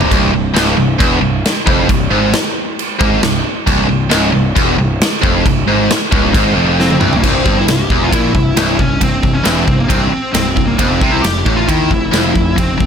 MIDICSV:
0, 0, Header, 1, 7, 480
1, 0, Start_track
1, 0, Tempo, 445765
1, 111, Time_signature, 4, 2, 24, 8
1, 13851, End_track
2, 0, Start_track
2, 0, Title_t, "Lead electric guitar"
2, 0, Program_c, 0, 29
2, 7326, Note_on_c, 0, 60, 85
2, 7684, Note_off_c, 0, 60, 0
2, 7706, Note_on_c, 0, 58, 76
2, 7809, Note_off_c, 0, 58, 0
2, 7809, Note_on_c, 0, 60, 75
2, 8165, Note_off_c, 0, 60, 0
2, 8170, Note_on_c, 0, 64, 68
2, 8268, Note_off_c, 0, 64, 0
2, 8294, Note_on_c, 0, 67, 75
2, 8646, Note_on_c, 0, 65, 74
2, 8648, Note_off_c, 0, 67, 0
2, 8756, Note_off_c, 0, 65, 0
2, 8756, Note_on_c, 0, 64, 82
2, 9466, Note_on_c, 0, 61, 76
2, 9490, Note_off_c, 0, 64, 0
2, 9711, Note_off_c, 0, 61, 0
2, 9721, Note_on_c, 0, 60, 71
2, 10056, Note_off_c, 0, 60, 0
2, 10060, Note_on_c, 0, 61, 67
2, 10179, Note_off_c, 0, 61, 0
2, 10179, Note_on_c, 0, 60, 78
2, 10547, Note_off_c, 0, 60, 0
2, 10552, Note_on_c, 0, 58, 68
2, 10647, Note_off_c, 0, 58, 0
2, 10652, Note_on_c, 0, 60, 86
2, 11106, Note_off_c, 0, 60, 0
2, 11119, Note_on_c, 0, 60, 80
2, 11481, Note_off_c, 0, 60, 0
2, 11486, Note_on_c, 0, 58, 74
2, 11613, Note_off_c, 0, 58, 0
2, 11618, Note_on_c, 0, 60, 83
2, 11956, Note_off_c, 0, 60, 0
2, 11964, Note_on_c, 0, 64, 71
2, 12076, Note_off_c, 0, 64, 0
2, 12080, Note_on_c, 0, 67, 86
2, 12451, Note_off_c, 0, 67, 0
2, 12455, Note_on_c, 0, 65, 84
2, 12577, Note_off_c, 0, 65, 0
2, 12577, Note_on_c, 0, 64, 91
2, 13543, Note_on_c, 0, 60, 84
2, 13573, Note_off_c, 0, 64, 0
2, 13851, Note_off_c, 0, 60, 0
2, 13851, End_track
3, 0, Start_track
3, 0, Title_t, "Distorted electric guitar"
3, 0, Program_c, 1, 30
3, 0, Note_on_c, 1, 48, 92
3, 111, Note_off_c, 1, 48, 0
3, 113, Note_on_c, 1, 36, 118
3, 342, Note_off_c, 1, 36, 0
3, 355, Note_on_c, 1, 36, 69
3, 545, Note_off_c, 1, 36, 0
3, 577, Note_on_c, 1, 37, 97
3, 817, Note_off_c, 1, 37, 0
3, 827, Note_on_c, 1, 36, 75
3, 1022, Note_off_c, 1, 36, 0
3, 1064, Note_on_c, 1, 40, 102
3, 1296, Note_off_c, 1, 40, 0
3, 1300, Note_on_c, 1, 36, 77
3, 1498, Note_off_c, 1, 36, 0
3, 1788, Note_on_c, 1, 41, 98
3, 2023, Note_off_c, 1, 41, 0
3, 2042, Note_on_c, 1, 36, 78
3, 2229, Note_off_c, 1, 36, 0
3, 2270, Note_on_c, 1, 44, 98
3, 2504, Note_off_c, 1, 44, 0
3, 3221, Note_on_c, 1, 44, 112
3, 3458, Note_off_c, 1, 44, 0
3, 3477, Note_on_c, 1, 36, 72
3, 3665, Note_off_c, 1, 36, 0
3, 3948, Note_on_c, 1, 36, 112
3, 4176, Note_off_c, 1, 36, 0
3, 4188, Note_on_c, 1, 36, 72
3, 4380, Note_off_c, 1, 36, 0
3, 4413, Note_on_c, 1, 37, 107
3, 4649, Note_off_c, 1, 37, 0
3, 4653, Note_on_c, 1, 36, 76
3, 4852, Note_off_c, 1, 36, 0
3, 4902, Note_on_c, 1, 40, 105
3, 5137, Note_off_c, 1, 40, 0
3, 5150, Note_on_c, 1, 36, 84
3, 5340, Note_off_c, 1, 36, 0
3, 5618, Note_on_c, 1, 41, 103
3, 5854, Note_off_c, 1, 41, 0
3, 5880, Note_on_c, 1, 36, 78
3, 6064, Note_off_c, 1, 36, 0
3, 6109, Note_on_c, 1, 44, 101
3, 6339, Note_off_c, 1, 44, 0
3, 6582, Note_on_c, 1, 37, 100
3, 6815, Note_off_c, 1, 37, 0
3, 6828, Note_on_c, 1, 44, 101
3, 7069, Note_off_c, 1, 44, 0
3, 7069, Note_on_c, 1, 41, 107
3, 7537, Note_off_c, 1, 41, 0
3, 7541, Note_on_c, 1, 36, 101
3, 7774, Note_off_c, 1, 36, 0
3, 7793, Note_on_c, 1, 36, 96
3, 8020, Note_off_c, 1, 36, 0
3, 8033, Note_on_c, 1, 43, 86
3, 8259, Note_off_c, 1, 43, 0
3, 8273, Note_on_c, 1, 36, 65
3, 8459, Note_off_c, 1, 36, 0
3, 8523, Note_on_c, 1, 40, 85
3, 8745, Note_off_c, 1, 40, 0
3, 8756, Note_on_c, 1, 46, 86
3, 8981, Note_off_c, 1, 46, 0
3, 8985, Note_on_c, 1, 36, 70
3, 9175, Note_off_c, 1, 36, 0
3, 9224, Note_on_c, 1, 36, 89
3, 9455, Note_off_c, 1, 36, 0
3, 9469, Note_on_c, 1, 36, 64
3, 9657, Note_off_c, 1, 36, 0
3, 9703, Note_on_c, 1, 36, 72
3, 9894, Note_off_c, 1, 36, 0
3, 9940, Note_on_c, 1, 36, 63
3, 10133, Note_off_c, 1, 36, 0
3, 10166, Note_on_c, 1, 40, 90
3, 10407, Note_off_c, 1, 40, 0
3, 10414, Note_on_c, 1, 36, 67
3, 10610, Note_off_c, 1, 36, 0
3, 10644, Note_on_c, 1, 36, 88
3, 10880, Note_off_c, 1, 36, 0
3, 11133, Note_on_c, 1, 36, 63
3, 11330, Note_off_c, 1, 36, 0
3, 11368, Note_on_c, 1, 36, 69
3, 11568, Note_off_c, 1, 36, 0
3, 11610, Note_on_c, 1, 41, 97
3, 11850, Note_off_c, 1, 41, 0
3, 11866, Note_on_c, 1, 48, 91
3, 12098, Note_off_c, 1, 48, 0
3, 12098, Note_on_c, 1, 41, 67
3, 12294, Note_off_c, 1, 41, 0
3, 12337, Note_on_c, 1, 45, 91
3, 12574, Note_on_c, 1, 51, 98
3, 12575, Note_off_c, 1, 45, 0
3, 12813, Note_off_c, 1, 51, 0
3, 12813, Note_on_c, 1, 41, 74
3, 13012, Note_off_c, 1, 41, 0
3, 13044, Note_on_c, 1, 41, 92
3, 13279, Note_off_c, 1, 41, 0
3, 13291, Note_on_c, 1, 41, 67
3, 13492, Note_off_c, 1, 41, 0
3, 13525, Note_on_c, 1, 41, 68
3, 13729, Note_off_c, 1, 41, 0
3, 13758, Note_on_c, 1, 41, 57
3, 13851, Note_off_c, 1, 41, 0
3, 13851, End_track
4, 0, Start_track
4, 0, Title_t, "Picked electric bass"
4, 0, Program_c, 2, 34
4, 123, Note_on_c, 2, 24, 102
4, 341, Note_off_c, 2, 24, 0
4, 355, Note_on_c, 2, 24, 76
4, 577, Note_off_c, 2, 24, 0
4, 589, Note_on_c, 2, 25, 92
4, 814, Note_off_c, 2, 25, 0
4, 833, Note_on_c, 2, 24, 74
4, 1055, Note_off_c, 2, 24, 0
4, 1079, Note_on_c, 2, 28, 89
4, 1299, Note_off_c, 2, 28, 0
4, 1318, Note_on_c, 2, 24, 86
4, 1539, Note_off_c, 2, 24, 0
4, 1803, Note_on_c, 2, 29, 96
4, 2021, Note_off_c, 2, 29, 0
4, 2039, Note_on_c, 2, 24, 83
4, 2259, Note_off_c, 2, 24, 0
4, 2274, Note_on_c, 2, 32, 92
4, 2496, Note_off_c, 2, 32, 0
4, 3241, Note_on_c, 2, 32, 101
4, 3459, Note_off_c, 2, 32, 0
4, 3477, Note_on_c, 2, 24, 74
4, 3697, Note_off_c, 2, 24, 0
4, 3953, Note_on_c, 2, 24, 104
4, 4174, Note_off_c, 2, 24, 0
4, 4198, Note_on_c, 2, 24, 80
4, 4417, Note_off_c, 2, 24, 0
4, 4440, Note_on_c, 2, 25, 95
4, 4658, Note_off_c, 2, 25, 0
4, 4686, Note_on_c, 2, 24, 75
4, 4900, Note_off_c, 2, 24, 0
4, 4913, Note_on_c, 2, 28, 95
4, 5133, Note_off_c, 2, 28, 0
4, 5165, Note_on_c, 2, 24, 81
4, 5379, Note_off_c, 2, 24, 0
4, 5635, Note_on_c, 2, 29, 99
4, 5853, Note_off_c, 2, 29, 0
4, 5873, Note_on_c, 2, 24, 85
4, 6092, Note_off_c, 2, 24, 0
4, 6102, Note_on_c, 2, 32, 89
4, 6326, Note_off_c, 2, 32, 0
4, 6592, Note_on_c, 2, 25, 84
4, 6811, Note_off_c, 2, 25, 0
4, 6831, Note_on_c, 2, 32, 93
4, 7050, Note_off_c, 2, 32, 0
4, 7063, Note_on_c, 2, 29, 98
4, 7508, Note_off_c, 2, 29, 0
4, 7544, Note_on_c, 2, 24, 95
4, 7766, Note_off_c, 2, 24, 0
4, 7791, Note_on_c, 2, 24, 85
4, 8009, Note_off_c, 2, 24, 0
4, 8030, Note_on_c, 2, 31, 73
4, 8249, Note_off_c, 2, 31, 0
4, 8266, Note_on_c, 2, 24, 71
4, 8487, Note_off_c, 2, 24, 0
4, 8511, Note_on_c, 2, 28, 75
4, 8729, Note_off_c, 2, 28, 0
4, 8753, Note_on_c, 2, 34, 83
4, 8971, Note_off_c, 2, 34, 0
4, 8987, Note_on_c, 2, 24, 73
4, 9208, Note_off_c, 2, 24, 0
4, 9220, Note_on_c, 2, 24, 78
4, 9444, Note_off_c, 2, 24, 0
4, 9466, Note_on_c, 2, 24, 74
4, 9687, Note_off_c, 2, 24, 0
4, 9704, Note_on_c, 2, 24, 69
4, 9926, Note_off_c, 2, 24, 0
4, 9942, Note_on_c, 2, 24, 68
4, 10165, Note_off_c, 2, 24, 0
4, 10173, Note_on_c, 2, 28, 89
4, 10400, Note_off_c, 2, 28, 0
4, 10420, Note_on_c, 2, 24, 71
4, 10644, Note_off_c, 2, 24, 0
4, 10656, Note_on_c, 2, 24, 80
4, 10883, Note_off_c, 2, 24, 0
4, 11135, Note_on_c, 2, 24, 69
4, 11363, Note_off_c, 2, 24, 0
4, 11380, Note_on_c, 2, 24, 76
4, 11606, Note_off_c, 2, 24, 0
4, 11620, Note_on_c, 2, 29, 88
4, 11846, Note_off_c, 2, 29, 0
4, 11859, Note_on_c, 2, 36, 81
4, 12083, Note_off_c, 2, 36, 0
4, 12089, Note_on_c, 2, 29, 73
4, 12320, Note_off_c, 2, 29, 0
4, 12341, Note_on_c, 2, 33, 82
4, 12567, Note_off_c, 2, 33, 0
4, 12584, Note_on_c, 2, 39, 82
4, 12809, Note_off_c, 2, 39, 0
4, 12822, Note_on_c, 2, 29, 74
4, 13048, Note_off_c, 2, 29, 0
4, 13052, Note_on_c, 2, 29, 76
4, 13283, Note_off_c, 2, 29, 0
4, 13303, Note_on_c, 2, 29, 78
4, 13529, Note_off_c, 2, 29, 0
4, 13543, Note_on_c, 2, 29, 74
4, 13769, Note_off_c, 2, 29, 0
4, 13786, Note_on_c, 2, 29, 68
4, 13851, Note_off_c, 2, 29, 0
4, 13851, End_track
5, 0, Start_track
5, 0, Title_t, "Muted distorted electric guitar strokes"
5, 10893, Note_on_c, 9, 29, 57
5, 11001, Note_off_c, 9, 29, 0
5, 13851, End_track
6, 0, Start_track
6, 0, Title_t, "Muted picked electric bass strokes"
6, 10891, Note_on_c, 9, 29, 37
6, 10999, Note_off_c, 9, 29, 0
6, 13851, End_track
7, 0, Start_track
7, 0, Title_t, "Drums"
7, 7, Note_on_c, 9, 43, 90
7, 115, Note_off_c, 9, 43, 0
7, 123, Note_on_c, 9, 36, 91
7, 125, Note_on_c, 9, 52, 60
7, 231, Note_off_c, 9, 36, 0
7, 232, Note_off_c, 9, 52, 0
7, 605, Note_on_c, 9, 52, 66
7, 609, Note_on_c, 9, 38, 121
7, 712, Note_off_c, 9, 52, 0
7, 717, Note_off_c, 9, 38, 0
7, 1081, Note_on_c, 9, 36, 115
7, 1083, Note_on_c, 9, 52, 60
7, 1189, Note_off_c, 9, 36, 0
7, 1191, Note_off_c, 9, 52, 0
7, 1566, Note_on_c, 9, 52, 60
7, 1570, Note_on_c, 9, 38, 106
7, 1673, Note_off_c, 9, 52, 0
7, 1678, Note_off_c, 9, 38, 0
7, 1800, Note_on_c, 9, 36, 102
7, 1907, Note_off_c, 9, 36, 0
7, 2036, Note_on_c, 9, 52, 57
7, 2038, Note_on_c, 9, 36, 83
7, 2144, Note_off_c, 9, 52, 0
7, 2145, Note_off_c, 9, 36, 0
7, 2513, Note_on_c, 9, 52, 59
7, 2517, Note_on_c, 9, 38, 116
7, 2620, Note_off_c, 9, 52, 0
7, 2625, Note_off_c, 9, 38, 0
7, 3005, Note_on_c, 9, 52, 63
7, 3112, Note_off_c, 9, 52, 0
7, 3238, Note_on_c, 9, 36, 113
7, 3346, Note_off_c, 9, 36, 0
7, 3475, Note_on_c, 9, 52, 64
7, 3480, Note_on_c, 9, 38, 112
7, 3583, Note_off_c, 9, 52, 0
7, 3587, Note_off_c, 9, 38, 0
7, 3954, Note_on_c, 9, 52, 66
7, 3956, Note_on_c, 9, 36, 97
7, 4062, Note_off_c, 9, 52, 0
7, 4064, Note_off_c, 9, 36, 0
7, 4426, Note_on_c, 9, 52, 67
7, 4431, Note_on_c, 9, 38, 115
7, 4534, Note_off_c, 9, 52, 0
7, 4538, Note_off_c, 9, 38, 0
7, 4915, Note_on_c, 9, 36, 106
7, 4919, Note_on_c, 9, 52, 61
7, 5023, Note_off_c, 9, 36, 0
7, 5026, Note_off_c, 9, 52, 0
7, 5399, Note_on_c, 9, 52, 64
7, 5403, Note_on_c, 9, 38, 113
7, 5506, Note_off_c, 9, 52, 0
7, 5511, Note_off_c, 9, 38, 0
7, 5637, Note_on_c, 9, 36, 108
7, 5745, Note_off_c, 9, 36, 0
7, 5876, Note_on_c, 9, 36, 92
7, 5880, Note_on_c, 9, 52, 54
7, 5983, Note_off_c, 9, 36, 0
7, 5988, Note_off_c, 9, 52, 0
7, 6357, Note_on_c, 9, 52, 60
7, 6362, Note_on_c, 9, 38, 115
7, 6465, Note_off_c, 9, 52, 0
7, 6469, Note_off_c, 9, 38, 0
7, 6594, Note_on_c, 9, 36, 115
7, 6702, Note_off_c, 9, 36, 0
7, 6832, Note_on_c, 9, 36, 108
7, 6836, Note_on_c, 9, 52, 63
7, 6940, Note_off_c, 9, 36, 0
7, 6944, Note_off_c, 9, 52, 0
7, 7324, Note_on_c, 9, 38, 68
7, 7431, Note_off_c, 9, 38, 0
7, 7434, Note_on_c, 9, 48, 73
7, 7541, Note_off_c, 9, 48, 0
7, 7547, Note_on_c, 9, 45, 87
7, 7654, Note_off_c, 9, 45, 0
7, 7676, Note_on_c, 9, 43, 90
7, 7784, Note_off_c, 9, 43, 0
7, 7791, Note_on_c, 9, 49, 82
7, 7792, Note_on_c, 9, 36, 87
7, 7899, Note_off_c, 9, 36, 0
7, 7899, Note_off_c, 9, 49, 0
7, 8030, Note_on_c, 9, 36, 94
7, 8138, Note_off_c, 9, 36, 0
7, 8273, Note_on_c, 9, 53, 59
7, 8277, Note_on_c, 9, 38, 97
7, 8380, Note_off_c, 9, 53, 0
7, 8385, Note_off_c, 9, 38, 0
7, 8508, Note_on_c, 9, 36, 87
7, 8616, Note_off_c, 9, 36, 0
7, 8750, Note_on_c, 9, 36, 91
7, 8755, Note_on_c, 9, 53, 61
7, 8857, Note_off_c, 9, 36, 0
7, 8863, Note_off_c, 9, 53, 0
7, 8988, Note_on_c, 9, 36, 80
7, 9096, Note_off_c, 9, 36, 0
7, 9227, Note_on_c, 9, 53, 56
7, 9232, Note_on_c, 9, 38, 93
7, 9335, Note_off_c, 9, 53, 0
7, 9339, Note_off_c, 9, 38, 0
7, 9467, Note_on_c, 9, 36, 82
7, 9574, Note_off_c, 9, 36, 0
7, 9704, Note_on_c, 9, 36, 76
7, 9705, Note_on_c, 9, 53, 55
7, 9811, Note_off_c, 9, 36, 0
7, 9813, Note_off_c, 9, 53, 0
7, 9942, Note_on_c, 9, 36, 84
7, 10050, Note_off_c, 9, 36, 0
7, 10178, Note_on_c, 9, 53, 57
7, 10183, Note_on_c, 9, 38, 102
7, 10286, Note_off_c, 9, 53, 0
7, 10290, Note_off_c, 9, 38, 0
7, 10420, Note_on_c, 9, 36, 83
7, 10528, Note_off_c, 9, 36, 0
7, 10660, Note_on_c, 9, 36, 99
7, 10664, Note_on_c, 9, 53, 59
7, 10768, Note_off_c, 9, 36, 0
7, 10772, Note_off_c, 9, 53, 0
7, 11140, Note_on_c, 9, 53, 62
7, 11144, Note_on_c, 9, 38, 99
7, 11248, Note_off_c, 9, 53, 0
7, 11252, Note_off_c, 9, 38, 0
7, 11380, Note_on_c, 9, 36, 82
7, 11488, Note_off_c, 9, 36, 0
7, 11618, Note_on_c, 9, 53, 58
7, 11619, Note_on_c, 9, 36, 89
7, 11725, Note_off_c, 9, 53, 0
7, 11727, Note_off_c, 9, 36, 0
7, 11860, Note_on_c, 9, 36, 98
7, 11968, Note_off_c, 9, 36, 0
7, 12107, Note_on_c, 9, 53, 67
7, 12111, Note_on_c, 9, 38, 104
7, 12214, Note_off_c, 9, 53, 0
7, 12219, Note_off_c, 9, 38, 0
7, 12343, Note_on_c, 9, 36, 103
7, 12450, Note_off_c, 9, 36, 0
7, 12583, Note_on_c, 9, 36, 93
7, 12587, Note_on_c, 9, 53, 59
7, 12691, Note_off_c, 9, 36, 0
7, 12695, Note_off_c, 9, 53, 0
7, 12823, Note_on_c, 9, 36, 79
7, 12931, Note_off_c, 9, 36, 0
7, 13066, Note_on_c, 9, 53, 57
7, 13071, Note_on_c, 9, 38, 95
7, 13174, Note_off_c, 9, 53, 0
7, 13178, Note_off_c, 9, 38, 0
7, 13304, Note_on_c, 9, 36, 84
7, 13412, Note_off_c, 9, 36, 0
7, 13545, Note_on_c, 9, 36, 79
7, 13546, Note_on_c, 9, 53, 53
7, 13652, Note_off_c, 9, 36, 0
7, 13654, Note_off_c, 9, 53, 0
7, 13788, Note_on_c, 9, 36, 83
7, 13851, Note_off_c, 9, 36, 0
7, 13851, End_track
0, 0, End_of_file